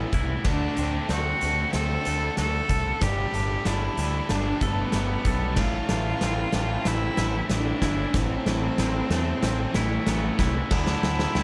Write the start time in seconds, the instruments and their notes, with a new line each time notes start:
Already playing: clean electric guitar E3 B3 E4, cello B3
0.05 overdriven electric guitar A2 E3
0.13 picked electric bass C2, overdriven electric guitar A2 E3, clean electric guitar E4, kick, closed hi-hat
0.21 overdriven electric guitar A2 E3
0.29 overdriven electric guitar A2 E3
0.36 overdriven electric guitar A2 E3
0.44 picked electric bass D2, overdriven electric guitar D3 A3, clean electric guitar D3, cello D4, kick, snare, crash
0.52 overdriven electric guitar D3 A3
0.60 overdriven electric guitar D3 A3
0.68 overdriven electric guitar D3 A3
0.75 picked electric bass D2, overdriven electric guitar D3 A3, clean electric guitar C4, closed hi-hat
0.83 overdriven electric guitar D3 A3
0.91 overdriven electric guitar D3 A3
0.99 overdriven electric guitar D3 A3
1.07 picked electric bass D2, overdriven electric guitar D3 A3, clean electric guitar C4, snare, closed hi-hat
1.12 overdriven electric guitar D3 A3, cello F#4
1.22 overdriven electric guitar D3 A3
1.30 overdriven electric guitar D3 A3
1.38 overdriven electric guitar D3 A3, clean electric guitar D3, closed hi-hat
1.43 picked electric bass D2, overdriven electric guitar D3 A3
1.52 overdriven electric guitar D3 A3
1.61 overdriven electric guitar D3 A3
1.69 overdriven electric guitar D3 A3
1.73 picked electric bass D2, overdriven electric guitar D3 A3, clean electric guitar C4, cello A4, snare, closed hi-hat
1.85 overdriven electric guitar D3 A3
1.92 overdriven electric guitar D3 A3
2.00 overdriven electric guitar D3 A3
2.05 picked electric bass D2, overdriven electric guitar D3 A3, clean electric guitar A4, closed hi-hat
2.15 overdriven electric guitar D3 A3
2.22 overdriven electric guitar D3 A3
2.31 overdriven electric guitar D3 A3
2.37 picked electric bass D2, overdriven electric guitar D3 A3, clean electric guitar F#4, cello A4, snare, closed hi-hat
2.46 overdriven electric guitar D3 A3
2.54 overdriven electric guitar D3 A3
2.62 overdriven electric guitar D3 A3
2.69 picked electric bass C2, overdriven electric guitar D3 A3, clean electric guitar A4, kick, closed hi-hat
2.78 overdriven electric guitar D3 A3
2.84 overdriven electric guitar D3 A3
2.93 overdriven electric guitar D3 A3
3.01 picked electric bass G1, overdriven electric guitar G3 A3, clean electric guitar G3, cello G4, kick, snare, closed hi-hat
3.09 overdriven electric guitar G3 A3
3.17 overdriven electric guitar G3 A3
3.25 overdriven electric guitar G3 A3
3.31 picked electric bass G1, overdriven electric guitar G3 A3, clean electric guitar D4, closed hi-hat
3.40 overdriven electric guitar G3 A3
3.48 overdriven electric guitar G3 A3
3.56 overdriven electric guitar G3 A3
3.64 picked electric bass G1, overdriven electric guitar G3 A3, clean electric guitar D4, cello E4, snare, closed hi-hat
3.72 overdriven electric guitar G3 A3
3.79 overdriven electric guitar G3 A3
3.86 overdriven electric guitar G3 A3
3.94 picked electric bass D2, overdriven electric guitar G3 A3, closed hi-hat
3.99 clean electric guitar G3
4.03 overdriven electric guitar G3 A3
4.10 overdriven electric guitar G3 A3
4.18 overdriven electric guitar G3 A3
4.26 overdriven electric guitar G3 A3, snare, closed hi-hat
4.30 picked electric bass G1, clean electric guitar D4, cello D4
4.34 overdriven electric guitar G3 A3
4.42 overdriven electric guitar G3 A3
4.49 overdriven electric guitar G3 A3
4.57 overdriven electric guitar G3 A3
4.61 picked electric bass G1, overdriven electric guitar G3 A3, cello B3, clean electric guitar A4, kick, closed hi-hat
4.72 overdriven electric guitar G3 A3
4.81 overdriven electric guitar G3 A3
4.88 overdriven electric guitar G3 A3, snare, closed hi-hat
4.94 picked electric bass G1, overdriven electric guitar G3 A3, clean electric guitar B3
5.03 overdriven electric guitar G3 A3
5.11 overdriven electric guitar G3 A3
5.18 overdriven electric guitar G3 A3
5.25 picked electric bass B1, overdriven electric guitar G3 A3, clean electric guitar A4, kick, closed hi-hat
5.34 overdriven electric guitar G3 A3
5.41 overdriven electric guitar G3 A3
5.50 overdriven electric guitar G3 A3
5.56 picked electric bass A1, overdriven electric guitar A2 E3, clean electric guitar A2, cello F4, kick, snare, crash
5.65 overdriven electric guitar A2 E3
5.73 overdriven electric guitar A2 E3
5.81 overdriven electric guitar A2 E3
5.88 picked electric bass A1, overdriven electric guitar A2 E3, clean electric guitar A3, snare, closed hi-hat
5.95 overdriven electric guitar A2 E3
6.04 overdriven electric guitar A2 E3
6.11 overdriven electric guitar A2 E3
6.19 picked electric bass A1, overdriven electric guitar A2 E3, clean electric guitar C4, snare, closed hi-hat
6.26 overdriven electric guitar A2 E3
6.35 overdriven electric guitar A2 E3
6.43 overdriven electric guitar A2 E3
6.50 overdriven electric guitar A2 E3, clean electric guitar A3, snare, closed hi-hat
6.54 picked electric bass A1
6.59 overdriven electric guitar A2 E3
6.66 overdriven electric guitar A2 E3
6.74 overdriven electric guitar A2 E3
6.81 overdriven electric guitar A2 E3
6.85 picked electric bass A1, overdriven electric guitar A2, clean electric guitar C4, cello E4, snare, closed hi-hat
6.90 overdriven electric guitar E3
6.95 overdriven electric guitar A2 E3
7.04 overdriven electric guitar A2 E3
7.12 overdriven electric guitar A2 E3
7.17 picked electric bass A1, overdriven electric guitar A2, clean electric guitar E4, snare, closed hi-hat
7.21 overdriven electric guitar E3
7.27 overdriven electric guitar A2 E3
7.35 overdriven electric guitar A2 E3
7.43 overdriven electric guitar A2 E3
7.50 picked electric bass A1, overdriven electric guitar A2 E3, cello D4, snare, closed hi-hat
7.58 overdriven electric guitar A2 E3
7.66 overdriven electric guitar A2 E3
7.74 overdriven electric guitar A2 E3
7.80 picked electric bass G1, overdriven electric guitar A2 E3, clean electric guitar E4, kick, snare, closed hi-hat
7.89 overdriven electric guitar A2 E3
7.97 overdriven electric guitar A2 E3
8.05 overdriven electric guitar A2 E3
8.14 picked electric bass A1, overdriven electric guitar A2 E3, clean electric guitar A2, cello C4, kick, snare, closed hi-hat
8.22 overdriven electric guitar A2 E3
8.29 overdriven electric guitar A2 E3
8.36 overdriven electric guitar A2 E3
8.45 picked electric bass A1, overdriven electric guitar A2 E3, clean electric guitar A3, snare, closed hi-hat
8.53 overdriven electric guitar A2 E3
8.60 overdriven electric guitar A2 E3
8.68 overdriven electric guitar A2 E3
8.76 picked electric bass A1, overdriven electric guitar A2 E3, clean electric guitar C4, snare, closed hi-hat
8.84 overdriven electric guitar A2 E3
8.93 overdriven electric guitar A2 E3
8.99 overdriven electric guitar A2 E3
9.08 picked electric bass E2, overdriven electric guitar A2 E3, snare, closed hi-hat
9.12 overdriven electric guitar A2, clean electric guitar A3
9.16 overdriven electric guitar E3
9.23 overdriven electric guitar A2 E3
9.31 overdriven electric guitar A2 E3
9.38 overdriven electric guitar A2 E3
9.43 picked electric bass A1, overdriven electric guitar E3, clean electric guitar C4, snare, closed hi-hat
9.47 overdriven electric guitar A2
9.54 overdriven electric guitar A2 E3
9.61 overdriven electric guitar A2 E3
9.69 overdriven electric guitar A2 E3
9.74 picked electric bass A1, overdriven electric guitar A2 E3, cello A3, clean electric guitar E4, snare, closed hi-hat
9.86 overdriven electric guitar A2 E3
9.92 overdriven electric guitar A2 E3
10.00 overdriven electric guitar A2 E3
10.07 picked electric bass A1, overdriven electric guitar A2 E3, clean electric guitar B3, snare, closed hi-hat
10.16 overdriven electric guitar A2 E3
10.24 overdriven electric guitar A2 E3
10.32 overdriven electric guitar A2 E3
10.39 picked electric bass C2, overdriven electric guitar A2 E3, clean electric guitar E4, kick, snare, closed hi-hat
10.47 overdriven electric guitar A2 E3
10.55 overdriven electric guitar A2 E3
10.63 overdriven electric guitar A2 E3
10.69 picked electric bass D2, overdriven electric guitar D3 A3, clean electric guitar D3, cello E4, kick, snare, crash
10.77 overdriven electric guitar D3 A3
10.85 overdriven electric guitar D3 A3, snare
10.92 overdriven electric guitar D3 A3
11.00 picked electric bass D2, overdriven electric guitar D3 A3, clean electric guitar C4, snare
11.07 overdriven electric guitar D3 A3
11.15 overdriven electric guitar D3 A3
11.19 overdriven electric guitar D3, snare
11.25 overdriven electric guitar A3
11.31 overdriven electric guitar D3 A3
11.35 picked electric bass D2, overdriven electric guitar D3, clean electric guitar C4, snare